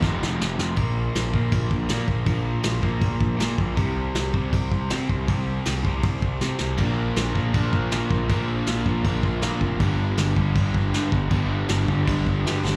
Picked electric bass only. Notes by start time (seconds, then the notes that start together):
0.02 F1
0.22 F1
0.40 F1
0.59 F1
0.77 A#1
1.15 A#1
1.34 A#1
1.52 A#1
1.70 A#1
1.90 A#2
2.08 A#1
2.26 A#1
2.65 A#1
2.83 A#1
3.01 A#1
3.21 A#1
3.39 A#2
3.58 A#1
3.77 C2
4.14 C2
4.34 C2
4.52 C2
4.72 C2
4.92 C3
5.09 C2
5.28 C2
5.66 C2
5.84 C2
6.03 C2
6.22 C2
6.41 C3
6.60 C2
6.79 A#1
7.17 A#1
7.35 A#1
7.54 A#1
7.73 A#1
7.93 A#2
8.10 A#1
8.30 A#1
8.68 A#1
8.86 A#1
9.04 A#1
9.23 A#1
9.43 A#2
9.61 F1
9.80 G1
10.18 G1
10.36 G1
10.55 G1
10.74 G1
10.93 G2
11.12 G1
11.31 G1
11.69 G1
11.88 G1
12.07 G1
12.26 G1
12.45 G2
12.64 G1